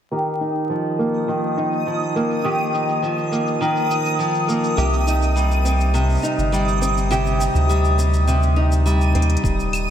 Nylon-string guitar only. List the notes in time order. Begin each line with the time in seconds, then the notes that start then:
0.11 D#3 G4
0.41 D#4
0.69 F3
0.99 A#3
1.28 D#3
1.57 D#4
1.86 F3
2.16 A#3
2.44 D#3 G4
2.73 D#4
3.02 F3
3.32 A#3
3.61 D#3
3.90 D#4
4.19 F3
4.48 A#3
4.77 C3 G4
5.07 D#4
5.36 G3
5.65 C4
5.94 C3
6.23 D#4
6.52 G3
6.81 C4
7.11 C3 G4
7.40 D#4
7.69 G3
7.98 C4
8.27 C3
8.56 D#4
8.86 G3
9.15 C4